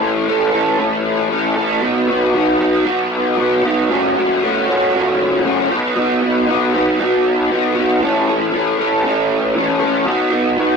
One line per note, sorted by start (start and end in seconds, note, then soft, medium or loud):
0.00 0.28 A2 medium
0.00 0.26 E3 medium
0.00 0.27 A3 medium
0.00 0.28 C#4 medium
0.00 0.29 A4 medium
0.27 0.77 E3 medium
0.27 0.54 A3 medium
0.27 0.53 C#4 medium
0.27 0.51 A4 medium
0.53 0.78 A3 medium
0.53 0.78 C#4 medium
0.53 0.79 A4 medium
0.78 1.57 A2 medium
0.78 1.28 E3 medium
0.78 1.30 A3 loud
0.78 1.30 C#4 loud
0.78 1.32 A4 loud
1.30 1.81 E3 medium
1.30 1.58 A3 medium
1.30 1.57 C#4 medium
1.30 1.55 A4 medium
1.56 1.83 A3 medium
1.56 1.82 C#4 medium
1.56 1.81 A4 medium
1.81 2.34 B2 medium
1.81 2.34 F#3 medium
1.81 2.10 B3 medium
1.81 2.08 D#4 medium
1.81 2.08 F#4 loud
2.08 2.34 B3 medium
2.08 2.34 D#4 medium
2.08 2.36 F#4 medium
2.34 2.85 F#3 medium
2.34 2.61 B3 medium
2.34 2.60 D#4 medium
2.34 2.60 F#4 medium
2.60 2.85 B3 medium
2.60 2.86 D#4 medium
2.60 2.87 F#4 medium
2.85 3.63 B2 loud
2.85 3.37 F#3 loud
2.85 3.38 B3 medium
2.85 3.38 D#4 medium
2.85 3.40 F#4 loud
3.38 3.90 F#3 medium
3.38 3.64 B3 medium
3.38 3.63 D#4 medium
3.38 3.62 F#4 medium
3.63 3.89 B3 medium
3.63 3.88 D#4 medium
3.63 3.92 F#4 medium
3.90 4.41 F#2 medium
3.90 4.42 C#3 medium
3.90 4.18 F#3 medium
3.90 4.16 A3 medium
3.90 4.15 C#4 medium
3.90 4.15 F#4 medium
4.15 4.41 F#3 medium
4.15 4.42 A3 medium
4.15 4.42 C#4 medium
4.15 4.44 F#4 medium
4.42 4.70 F#3 medium
4.42 4.69 A3 medium
4.42 4.67 C#4 medium
4.42 4.67 F#4 medium
4.68 4.93 F#3 medium
4.68 4.93 A3 medium
4.68 4.94 C#4 medium
4.68 4.95 F#4 medium
4.93 5.69 F#2 medium
4.93 5.69 C#3 loud
4.93 5.43 F#3 medium
4.93 5.44 A3 loud
4.93 5.45 C#4 loud
4.93 5.46 F#4 loud
5.45 5.69 F#3 medium
5.45 5.69 A3 medium
5.45 5.70 C#4 medium
5.45 5.69 F#4 medium
5.70 5.94 B2 medium
5.70 5.95 F#3 medium
5.70 5.95 B3 medium
5.70 5.96 D#4 medium
5.70 5.97 F#4 medium
5.95 6.47 B2 medium
5.95 6.46 F#3 medium
5.95 6.23 B3 loud
5.95 6.22 D#4 loud
5.95 6.20 F#4 loud
6.22 6.47 B3 medium
6.22 6.48 D#4 medium
6.22 6.49 F#4 medium
6.47 6.99 F#3 medium
6.47 6.75 B3 medium
6.47 6.74 D#4 medium
6.47 6.73 F#4 medium
6.74 7.00 B3 medium
6.74 7.00 D#4 medium
6.74 7.01 F#4 medium
7.00 7.76 B2 medium
7.00 7.49 F#3 loud
7.00 7.50 B3 medium
7.00 7.51 D#4 loud
7.00 7.52 F#4 loud
7.50 8.00 F#3 medium
7.50 7.77 B3 medium
7.50 7.76 D#4 medium
7.50 7.74 F#4 medium
7.76 8.01 B3 medium
7.76 8.01 D#4 medium
7.76 8.00 F#4 medium
8.01 8.53 A2 medium
8.01 8.51 E3 medium
8.01 8.29 A3 medium
8.01 8.28 C#4 medium
8.01 8.26 A4 medium
8.27 8.52 A3 medium
8.27 8.53 C#4 medium
8.27 8.54 A4 medium
8.53 9.03 E3 medium
8.53 8.80 A3 medium
8.53 8.78 C#4 medium
8.53 8.77 A4 medium
8.78 9.04 A3 medium
8.78 9.05 C#4 medium
8.78 9.06 A4 medium
9.04 9.81 A2 medium
9.04 9.54 E3 medium
9.04 9.55 A3 loud
9.04 9.56 C#4 loud
9.04 9.57 A4 loud
9.56 10.05 E3 medium
9.56 9.82 A3 medium
9.56 9.80 C#4 medium
9.56 9.79 A4 medium
9.80 10.06 A3 medium
9.80 10.05 C#4 medium
9.80 10.04 A4 medium
10.05 10.57 B2 medium
10.05 10.57 F#3 medium
10.05 10.33 B3 medium
10.05 10.31 D#4 medium
10.05 10.31 F#4 medium
10.31 10.57 B3 medium
10.31 10.58 D#4 medium
10.31 10.59 F#4 medium
10.57 10.77 F#3 medium
10.57 10.77 B3 medium
10.57 10.77 D#4 medium
10.57 10.77 F#4 medium